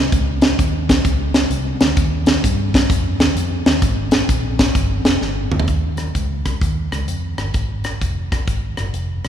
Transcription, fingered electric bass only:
0.12 C#2
0.59 D#2
1.04 C#2
1.50 C2
1.81 D2
1.97 D#2
2.44 G2
2.90 F2
3.19 D#2
3.35 F2
3.66 D#2
3.82 G#1
4.29 A#1
4.75 G1
5.04 F1
5.21 G1
5.51 D2
5.67 D#2
6.15 C#2
6.62 D#2
6.91 C#2
7.07 F2
7.38 G1
7.54 G#1
8.01 F1
8.48 G#1
8.78 F#1
8.94 F1
9.25 C2

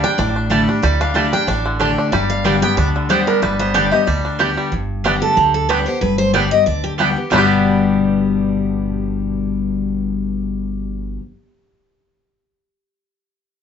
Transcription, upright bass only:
0.19 A1
0.83 D2
1.48 A1
2.12 G1
2.77 D2
3.43 G1
4.07 D2
4.72 G1
5.37 D2
6.02 G1
6.67 D2
7.32 G1

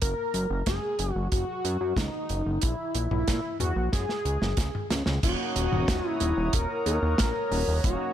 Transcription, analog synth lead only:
0.01 A#4
0.66 G#4
1.13 F#4
1.32 F#4
1.97 D#4
2.62 E4
3.11 E4
3.60 F#4
3.93 G#4
5.24 F#4
6.10 E4
6.54 A#4
6.86 A#4
7.84 F#4

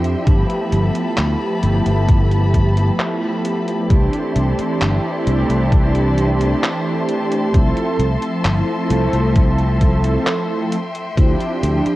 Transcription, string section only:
Already playing: F3 E5 G5 C6
0.27 A5 B5
3.91 E4 D5 A5 C6
7.54 F3 E5
10.72 F3 G5

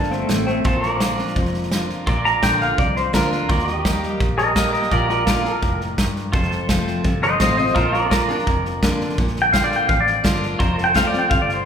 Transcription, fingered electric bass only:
Already playing: G1
0.29 A1
0.65 A#1
1.36 F1
2.07 A#1
2.42 A#1
2.78 C2
3.14 D2
3.49 D#2
4.21 A#1
4.91 A#1
5.62 F1
6.34 F1
6.69 F1
7.04 G1
7.40 A1
7.76 A#1
8.47 F1
9.18 A#1
9.89 A1
10.24 G1
10.60 F1
11.31 G1

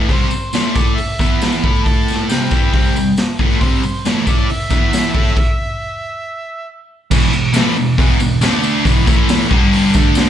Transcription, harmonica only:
0.12 C5
0.54 C5
0.75 D5
0.96 E5
1.63 B5
1.84 A5
2.29 G5
3.61 C5
4.29 D5
4.39 D5
4.51 E5

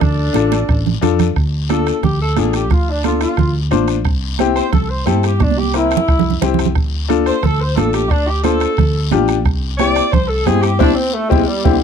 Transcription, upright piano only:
0.33 D4 F4 A4
1.01 D4 F4 A4
1.69 D4 F4 A4
2.37 D4 F4 A4
3.04 D4 F4 A4
3.71 D4 F4 C5
4.40 C4 E4 G4
5.06 C4 E4 G4
5.74 C4 E4 A#4
6.42 C4 E4 G4
7.09 D4 F4 A4
7.76 D4 F4 A4
8.43 D4 F4 C5
9.12 D4 F4 G4
9.79 C4 E4 G4
10.47 C4 E4 G4
10.79 C4 E4 G4
11.30 C4 E4 G4
11.65 C4 E4 G4

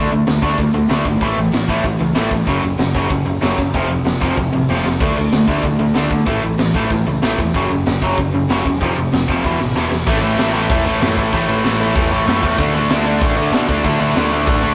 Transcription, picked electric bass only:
0.11 D2
0.27 D2
0.42 D2
0.58 D2
0.74 D2
0.90 D2
1.05 G#1
1.21 A1
1.38 A1
1.53 A1
1.68 A1
1.84 A1
2.01 C#2
2.16 A1
2.31 A1
2.47 F#1
2.63 F#1
2.79 F#1
2.95 F#1
3.10 F#1
3.26 F#1
3.42 F#1
3.58 F#2
3.74 F1
3.89 F1
4.05 F1
4.22 F1
4.37 F1
4.53 A1
4.69 F1
4.85 F1
5.00 D2
5.17 D2
5.33 D2
5.48 D2
5.63 D2
5.80 D2
5.95 D2
6.10 D3
6.27 A1
6.43 A1
6.59 A1
6.75 A1
6.90 A1
7.07 C#2
7.23 A1
7.38 E1
7.55 F#1
7.70 F#1
7.86 F#1
8.02 F#1
8.18 F#1
8.34 F#1
8.49 F#1
8.65 E1
8.81 F1
8.97 F1
9.13 F1
9.28 F1
9.44 E1
9.60 G#1
9.75 E1
9.91 E1
10.07 A1
10.23 A1
10.38 A1
10.70 E1
10.86 A1
11.02 F#2
11.17 A1
11.33 A1
11.48 A1
11.64 A1
11.96 E1
12.12 A1
12.27 F#2
12.43 E2
12.58 D2
12.74 D2
12.90 D2
13.22 A1
13.37 D2
13.52 B2
13.69 D2
13.84 D2
14.00 D2
14.16 D2
14.48 A1
14.63 D2

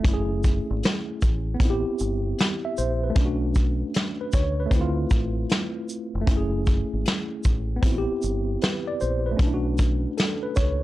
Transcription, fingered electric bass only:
0.05 F#1
0.70 G#1
1.23 A1
1.60 A1
2.01 G1
2.78 A#1
3.17 B1
4.34 D2
4.72 D2
5.12 A1
6.15 F1
6.28 F#1
6.93 G#1
7.46 A1
7.83 A1
8.10 muted fingered electric bass stroke
8.24 G1
9.02 A#1
9.40 B1
10.58 C#2

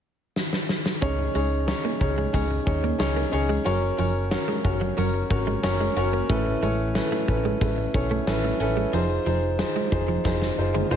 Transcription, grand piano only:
1.01 C#3 C#4 D#4 G#4 C#5
1.34 C#4 D#4 G#4 C#5
1.67 C#4 D#4 G#4 C#5
2.00 C#4 D#4 G#4 C#5
2.33 C#4 D#4 G#4 C#5
2.66 C#4 D#4 G#4 C#5
2.98 C#4 D#4 G#4 C#5
3.31 C#4 D#4 G#4 C#5
3.65 C#4 F#4 A#4 C#5
3.98 C#4 F#4 A#4 C#5
4.31 C#4 F#4 A#4 C#5
4.64 C#4 F#4 A#4 C#5
4.97 C#4 F#4 A#4 C#5
5.29 C#4 F#4 A#4 C#5
5.63 C#4 F#4 A#4 C#5
5.96 C#4 F#4 A#4 C#5
6.29 A2 C#4 E4 A4 B4
6.62 C#4 E4 A4 C#5
6.95 C#4 E4 A4 B4
7.28 C#4 E4 A4 B4
7.61 C#4 E4 A4 B4
7.94 C#4 E4 A4 C#5
8.27 C#4 E4 A4 B4
8.60 C#4 E4 A4 B4
8.93 D#4 F4 G#4 C5
9.26 D#4 F4 G#4 C5
9.58 D#4 F4 G#4 C5
9.91 D#4 F4 G#4 C5
10.25 D#4 F4 G#4 C5
10.58 D#4 F4 G#4 C5
10.90 D#4 F4 G#4 C5

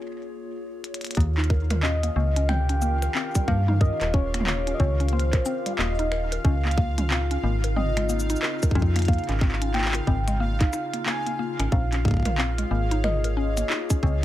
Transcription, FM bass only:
1.17 D#2
2.16 C#2
3.48 G2
4.01 D#1
4.80 C#2
5.33 A#1
5.79 D#1
6.45 C#2
7.43 G#1
8.75 F2
9.29 G#1
10.07 G#1
11.59 G#1
11.72 A#1
12.71 G#1
14.03 C#2

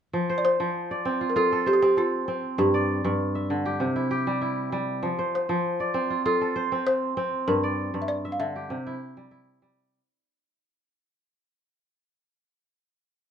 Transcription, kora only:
0.13 F3
0.30 C5
0.60 F3
0.91 D5
1.05 C4
1.21 F4
1.36 F4
1.52 A4
1.66 C5
1.82 C4
1.97 A4
2.28 C4
2.58 G2
2.74 D5
3.04 G2
3.35 E5
3.50 D3
3.66 G4
3.80 C3
3.96 E4
4.11 G4
4.27 G3
4.41 E4
4.72 G3
5.03 F3
5.19 C5
5.49 F3
5.80 D5
5.94 C4
6.10 F4
6.26 F4
6.41 A4
6.56 C5
6.72 C4
7.17 C4
7.48 G2
7.63 D5
7.94 G2
8.25 E5
8.40 D3
8.56 G4
8.70 C3
8.87 E4
9.17 G3
9.31 E4
9.62 G3

